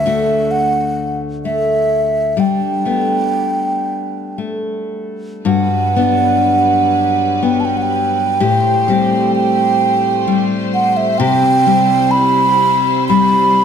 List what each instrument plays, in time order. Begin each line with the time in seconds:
Already playing: steel-string acoustic guitar D2, flute E5
0.06 steel-string acoustic guitar A3 D4 F#4
0.51 flute F#5
1.45 steel-string acoustic guitar A3, flute E5
2.37 steel-string acoustic guitar G3 D4, flute G5
2.85 steel-string acoustic guitar A3 B3 D4
4.38 steel-string acoustic guitar A3
5.45 steel-string acoustic guitar G2 F#4, string section F#3 G3 B4, flute F#5
5.96 steel-string acoustic guitar B3 D4
7.43 steel-string acoustic guitar B3, flute G5
7.60 flute A5
7.65 flute G5
7.77 flute F#5
7.82 flute G5
8.40 steel-string acoustic guitar A2 G4, string section A3 G4 C5
8.88 steel-string acoustic guitar G3 C4 G4
9.35 flute G5
10.27 steel-string acoustic guitar G3
10.74 flute F#5
10.97 flute E5
11.18 steel-string acoustic guitar C3 G4, string section G3 E4, flute G5
11.67 steel-string acoustic guitar G3 C4 G4
12.11 flute B5
13.08 steel-string acoustic guitar G3, flute B5